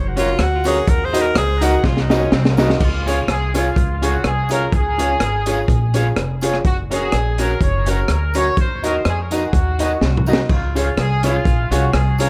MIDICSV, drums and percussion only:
0, 0, Header, 1, 2, 480
1, 0, Start_track
1, 0, Key_signature, -5, "major"
1, 0, Tempo, 481155
1, 877, Time_signature, 4, 2, 24, 8
1, 12265, End_track
2, 0, Start_track
2, 0, Title_t, "Drums"
2, 168, Note_on_c, 9, 42, 86
2, 179, Note_on_c, 9, 54, 71
2, 267, Note_off_c, 9, 42, 0
2, 279, Note_off_c, 9, 54, 0
2, 387, Note_on_c, 9, 37, 115
2, 390, Note_on_c, 9, 42, 54
2, 487, Note_off_c, 9, 37, 0
2, 490, Note_off_c, 9, 42, 0
2, 636, Note_on_c, 9, 54, 77
2, 651, Note_on_c, 9, 42, 88
2, 736, Note_off_c, 9, 54, 0
2, 750, Note_off_c, 9, 42, 0
2, 872, Note_on_c, 9, 42, 68
2, 873, Note_on_c, 9, 36, 113
2, 972, Note_off_c, 9, 42, 0
2, 973, Note_off_c, 9, 36, 0
2, 1140, Note_on_c, 9, 42, 90
2, 1140, Note_on_c, 9, 54, 86
2, 1239, Note_off_c, 9, 54, 0
2, 1240, Note_off_c, 9, 42, 0
2, 1352, Note_on_c, 9, 37, 121
2, 1354, Note_on_c, 9, 42, 75
2, 1452, Note_off_c, 9, 37, 0
2, 1453, Note_off_c, 9, 42, 0
2, 1610, Note_on_c, 9, 42, 81
2, 1616, Note_on_c, 9, 54, 91
2, 1710, Note_off_c, 9, 42, 0
2, 1715, Note_off_c, 9, 54, 0
2, 1833, Note_on_c, 9, 36, 110
2, 1835, Note_on_c, 9, 38, 55
2, 1933, Note_off_c, 9, 36, 0
2, 1935, Note_off_c, 9, 38, 0
2, 1964, Note_on_c, 9, 38, 50
2, 2064, Note_off_c, 9, 38, 0
2, 2095, Note_on_c, 9, 38, 75
2, 2105, Note_on_c, 9, 54, 77
2, 2195, Note_off_c, 9, 38, 0
2, 2205, Note_off_c, 9, 54, 0
2, 2315, Note_on_c, 9, 38, 86
2, 2414, Note_off_c, 9, 38, 0
2, 2447, Note_on_c, 9, 38, 85
2, 2547, Note_off_c, 9, 38, 0
2, 2565, Note_on_c, 9, 54, 79
2, 2577, Note_on_c, 9, 38, 100
2, 2665, Note_off_c, 9, 54, 0
2, 2677, Note_off_c, 9, 38, 0
2, 2691, Note_on_c, 9, 38, 84
2, 2790, Note_off_c, 9, 38, 0
2, 2798, Note_on_c, 9, 36, 109
2, 2798, Note_on_c, 9, 49, 86
2, 2898, Note_off_c, 9, 36, 0
2, 2898, Note_off_c, 9, 49, 0
2, 3066, Note_on_c, 9, 54, 78
2, 3069, Note_on_c, 9, 42, 84
2, 3166, Note_off_c, 9, 54, 0
2, 3168, Note_off_c, 9, 42, 0
2, 3275, Note_on_c, 9, 37, 108
2, 3277, Note_on_c, 9, 42, 64
2, 3375, Note_off_c, 9, 37, 0
2, 3377, Note_off_c, 9, 42, 0
2, 3535, Note_on_c, 9, 42, 88
2, 3539, Note_on_c, 9, 54, 85
2, 3542, Note_on_c, 9, 37, 62
2, 3635, Note_off_c, 9, 42, 0
2, 3639, Note_off_c, 9, 54, 0
2, 3642, Note_off_c, 9, 37, 0
2, 3754, Note_on_c, 9, 36, 108
2, 3764, Note_on_c, 9, 42, 65
2, 3854, Note_off_c, 9, 36, 0
2, 3864, Note_off_c, 9, 42, 0
2, 4015, Note_on_c, 9, 42, 94
2, 4024, Note_on_c, 9, 54, 71
2, 4115, Note_off_c, 9, 42, 0
2, 4124, Note_off_c, 9, 54, 0
2, 4232, Note_on_c, 9, 37, 104
2, 4235, Note_on_c, 9, 42, 54
2, 4331, Note_off_c, 9, 37, 0
2, 4334, Note_off_c, 9, 42, 0
2, 4478, Note_on_c, 9, 54, 78
2, 4496, Note_on_c, 9, 42, 100
2, 4577, Note_off_c, 9, 54, 0
2, 4595, Note_off_c, 9, 42, 0
2, 4713, Note_on_c, 9, 36, 113
2, 4714, Note_on_c, 9, 42, 58
2, 4813, Note_off_c, 9, 36, 0
2, 4814, Note_off_c, 9, 42, 0
2, 4978, Note_on_c, 9, 54, 77
2, 4979, Note_on_c, 9, 42, 85
2, 5078, Note_off_c, 9, 42, 0
2, 5078, Note_off_c, 9, 54, 0
2, 5190, Note_on_c, 9, 37, 123
2, 5192, Note_on_c, 9, 42, 68
2, 5290, Note_off_c, 9, 37, 0
2, 5291, Note_off_c, 9, 42, 0
2, 5446, Note_on_c, 9, 42, 81
2, 5453, Note_on_c, 9, 54, 81
2, 5546, Note_off_c, 9, 42, 0
2, 5552, Note_off_c, 9, 54, 0
2, 5669, Note_on_c, 9, 36, 108
2, 5680, Note_on_c, 9, 42, 70
2, 5769, Note_off_c, 9, 36, 0
2, 5780, Note_off_c, 9, 42, 0
2, 5924, Note_on_c, 9, 42, 86
2, 5939, Note_on_c, 9, 54, 80
2, 6024, Note_off_c, 9, 42, 0
2, 6039, Note_off_c, 9, 54, 0
2, 6150, Note_on_c, 9, 37, 110
2, 6153, Note_on_c, 9, 42, 55
2, 6250, Note_off_c, 9, 37, 0
2, 6253, Note_off_c, 9, 42, 0
2, 6398, Note_on_c, 9, 54, 77
2, 6412, Note_on_c, 9, 42, 89
2, 6498, Note_off_c, 9, 54, 0
2, 6511, Note_off_c, 9, 42, 0
2, 6520, Note_on_c, 9, 37, 68
2, 6620, Note_off_c, 9, 37, 0
2, 6631, Note_on_c, 9, 36, 101
2, 6631, Note_on_c, 9, 42, 54
2, 6731, Note_off_c, 9, 36, 0
2, 6731, Note_off_c, 9, 42, 0
2, 6897, Note_on_c, 9, 42, 88
2, 6901, Note_on_c, 9, 54, 81
2, 6997, Note_off_c, 9, 42, 0
2, 7001, Note_off_c, 9, 54, 0
2, 7106, Note_on_c, 9, 37, 117
2, 7108, Note_on_c, 9, 42, 68
2, 7206, Note_off_c, 9, 37, 0
2, 7208, Note_off_c, 9, 42, 0
2, 7364, Note_on_c, 9, 42, 88
2, 7374, Note_on_c, 9, 54, 73
2, 7464, Note_off_c, 9, 42, 0
2, 7474, Note_off_c, 9, 54, 0
2, 7588, Note_on_c, 9, 36, 97
2, 7595, Note_on_c, 9, 42, 63
2, 7688, Note_off_c, 9, 36, 0
2, 7695, Note_off_c, 9, 42, 0
2, 7844, Note_on_c, 9, 42, 90
2, 7860, Note_on_c, 9, 54, 67
2, 7944, Note_off_c, 9, 42, 0
2, 7960, Note_off_c, 9, 54, 0
2, 8063, Note_on_c, 9, 37, 103
2, 8066, Note_on_c, 9, 42, 61
2, 8163, Note_off_c, 9, 37, 0
2, 8166, Note_off_c, 9, 42, 0
2, 8316, Note_on_c, 9, 54, 75
2, 8328, Note_on_c, 9, 42, 96
2, 8416, Note_off_c, 9, 54, 0
2, 8428, Note_off_c, 9, 42, 0
2, 8550, Note_on_c, 9, 42, 63
2, 8551, Note_on_c, 9, 36, 110
2, 8650, Note_off_c, 9, 42, 0
2, 8651, Note_off_c, 9, 36, 0
2, 8814, Note_on_c, 9, 54, 82
2, 8818, Note_on_c, 9, 42, 81
2, 8914, Note_off_c, 9, 54, 0
2, 8918, Note_off_c, 9, 42, 0
2, 9030, Note_on_c, 9, 37, 112
2, 9032, Note_on_c, 9, 42, 60
2, 9130, Note_off_c, 9, 37, 0
2, 9132, Note_off_c, 9, 42, 0
2, 9287, Note_on_c, 9, 42, 82
2, 9291, Note_on_c, 9, 54, 83
2, 9387, Note_off_c, 9, 42, 0
2, 9391, Note_off_c, 9, 54, 0
2, 9509, Note_on_c, 9, 36, 118
2, 9517, Note_on_c, 9, 42, 68
2, 9608, Note_off_c, 9, 36, 0
2, 9617, Note_off_c, 9, 42, 0
2, 9767, Note_on_c, 9, 42, 89
2, 9779, Note_on_c, 9, 54, 77
2, 9867, Note_off_c, 9, 42, 0
2, 9879, Note_off_c, 9, 54, 0
2, 9990, Note_on_c, 9, 38, 55
2, 10090, Note_off_c, 9, 38, 0
2, 10149, Note_on_c, 9, 45, 71
2, 10239, Note_on_c, 9, 54, 85
2, 10249, Note_off_c, 9, 45, 0
2, 10309, Note_on_c, 9, 38, 108
2, 10339, Note_off_c, 9, 54, 0
2, 10408, Note_off_c, 9, 38, 0
2, 10468, Note_on_c, 9, 55, 77
2, 10469, Note_on_c, 9, 36, 115
2, 10568, Note_off_c, 9, 55, 0
2, 10569, Note_off_c, 9, 36, 0
2, 10735, Note_on_c, 9, 54, 87
2, 10738, Note_on_c, 9, 42, 92
2, 10835, Note_off_c, 9, 54, 0
2, 10838, Note_off_c, 9, 42, 0
2, 10949, Note_on_c, 9, 37, 122
2, 10950, Note_on_c, 9, 42, 70
2, 11048, Note_off_c, 9, 37, 0
2, 11050, Note_off_c, 9, 42, 0
2, 11203, Note_on_c, 9, 42, 84
2, 11209, Note_on_c, 9, 54, 86
2, 11210, Note_on_c, 9, 37, 65
2, 11303, Note_off_c, 9, 42, 0
2, 11309, Note_off_c, 9, 54, 0
2, 11310, Note_off_c, 9, 37, 0
2, 11427, Note_on_c, 9, 36, 107
2, 11435, Note_on_c, 9, 42, 62
2, 11526, Note_off_c, 9, 36, 0
2, 11535, Note_off_c, 9, 42, 0
2, 11688, Note_on_c, 9, 42, 98
2, 11696, Note_on_c, 9, 54, 80
2, 11788, Note_off_c, 9, 42, 0
2, 11796, Note_off_c, 9, 54, 0
2, 11906, Note_on_c, 9, 37, 109
2, 11909, Note_on_c, 9, 42, 52
2, 12006, Note_off_c, 9, 37, 0
2, 12009, Note_off_c, 9, 42, 0
2, 12154, Note_on_c, 9, 54, 80
2, 12169, Note_on_c, 9, 42, 103
2, 12254, Note_off_c, 9, 54, 0
2, 12265, Note_off_c, 9, 42, 0
2, 12265, End_track
0, 0, End_of_file